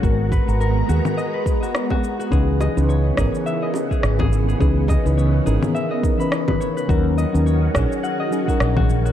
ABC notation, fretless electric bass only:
X:1
M:4/4
L:1/16
Q:"Swing 16ths" 1/4=105
K:C#dor
V:1 name="Fretless electric bass" clef=bass
G,,,2 z G,,,2 z D,, z8 z | C,,2 z C,,2 z G,,, z4 z G,,,3 z | C,,2 z C,,2 z G,,, z8 z | D,,2 z D,,2 z A,,, z4 z A,,,3 z |]